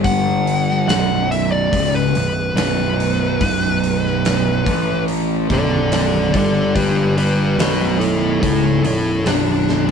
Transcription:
Already playing: G1 G2 D3 G3
0.04 F#5, kick, open hi-hat
0.47 open hi-hat
0.70 snare
0.87 B0 B1 F#2 B2 F#5, snare, open hi-hat
1.31 E5, open hi-hat
1.52 D5
1.71 C#1 C#2 G#2 C#3, kick, open hi-hat
1.95 B4
2.14 B0 B1 F#2, open hi-hat
2.55 B0 B1 F#2 B2 B4, snare, open hi-hat
3.00 open hi-hat
3.40 B0 B1 F#2 B2, kick, open hi-hat
3.84 open hi-hat
4.06 snare
4.25 snare, open hi-hat
4.65 A1 A2 E3 A3, kick, open hi-hat
5.08 open hi-hat
5.48 B0 B1 F#2 B2, kick, open hi-hat
5.53 A4 D5
5.92 A4 D5, snare, open hi-hat
6.32 G1 G2 D3 G3, kick, open hi-hat
6.36 A4 D5
6.75 G4 B4, kick, open hi-hat
7.17 G4 B4, open hi-hat
7.57 B0 B1 F#2 B2 F#4 B4, snare, open hi-hat
7.99 E4 A4, open hi-hat
8.42 C#1 C#2 G#2 C#3 E4 A4, kick, open hi-hat
8.82 B0 B1 F#2 E4 A4, open hi-hat
9.26 B0 B1 F#2 B2 D4, snare, open hi-hat
9.69 snare

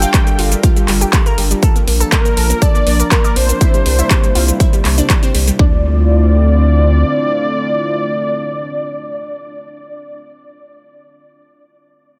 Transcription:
Already playing: G3 D4 F4 A4 A#4 G5
0.02 F4, closed hi-hat, shaker
0.14 G3, kick, clap, closed hi-hat, shaker
0.27 G3, closed hi-hat, shaker
0.39 G1 F4, open hi-hat
0.52 G3, closed hi-hat, shaker
0.63 F4, kick, closed hi-hat, shaker
0.76 G3, closed hi-hat, shaker
0.88 G1 G3, clap, open hi-hat
1.01 G4, closed hi-hat, shaker
1.13 G3, kick, clap, closed hi-hat, shaker
1.26 A#4, closed hi-hat, shaker
1.38 G1 G3, open hi-hat
1.51 G3, closed hi-hat, shaker
1.63 F3 A#3 D4 A4, kick, closed hi-hat, shaker
1.76 A#3, closed hi-hat, shaker
1.87 A#1 A#3, open hi-hat
2.00 A4, closed hi-hat, shaker
2.12 A#3 A#4, kick, clap, closed hi-hat, shaker
2.25 A#3, closed hi-hat, shaker
2.37 A#1 A4, open hi-hat
2.50 A#3, closed hi-hat, shaker
2.62 A4 D5, kick, closed hi-hat, shaker
2.75 A#3, shaker
2.87 A#1 A#3, open hi-hat
3.00 A#4, closed hi-hat, shaker
3.11 A#3 A#4, kick, clap, closed hi-hat, shaker
3.24 D5, closed hi-hat, shaker
3.36 A#1 A#3 C5, open hi-hat
3.49 A#3, closed hi-hat, shaker
3.61 C3 G3 E4, kick, closed hi-hat, shaker
3.74 G3, closed hi-hat, shaker
3.86 C2 G3, open hi-hat
3.99 E4, closed hi-hat, shaker
4.11 G3, kick, clap, closed hi-hat, shaker
4.24 G3, closed hi-hat, shaker
4.35 C2 F4, open hi-hat
4.48 G3, closed hi-hat, shaker
4.60 E4, kick, closed hi-hat, shaker
4.73 G3, closed hi-hat, shaker
4.85 C2 G3, clap, open hi-hat
4.98 D4, closed hi-hat, shaker
5.10 G3, kick, clap, closed hi-hat, shaker
5.23 C4, closed hi-hat, shaker
5.35 C2 G3, open hi-hat
5.47 G3, closed hi-hat, shaker
5.59 D2 D3 A3 C4 D4 E4 F4 D5, kick

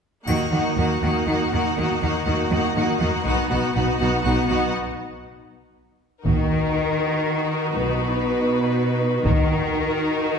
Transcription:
0.25 D#2 D#3 A#3 D#4 F#4 F#5, triangle
0.51 D#2 D#3 A#3 D#4 F#4 F#5
0.77 D#2 D#3 A#3 D#4 F#4 F#5
1.02 D#2 D#3 A#3 D#4 F#4 F#5
1.27 D#2 D#3 A#3 D#4 F#4 F#5
1.52 D#2 D#3 A#3 D#4 F#4 F#5
1.77 D#2 D#3 A#3 D#4 F#4 F#5
2.01 D#2 D#3 A#3 D#4 F#4 F#5
2.25 D#2 D#3 A#3 D#4 F#4 F#5
2.50 D#2 D#3 A#3 D#4 F#4 F#5
2.75 D#2 D#3 A#3 D#4 F#4 F#5
2.99 D#2 D#3 A#3 D#4 F#4 F#5
3.25 B1 B2 B3 D#4 F#4 F#5
3.50 B1 B2 B3 D#4 F#4 F#5
3.74 B1 B2 B3 D#4 F#4 F#5
3.98 B1 B2 B3 D#4 F#4 F#5
4.23 B1 B2 B3 D#4 F#4 F#5
4.47 B1 B2 B3 D#4 F#4 F#5
6.24 D#2 D#3 D#4 F#4 A#4, taiko
7.75 B1 B2 B4
9.24 D#2 D#3 D#4 F#4 A#4, taiko

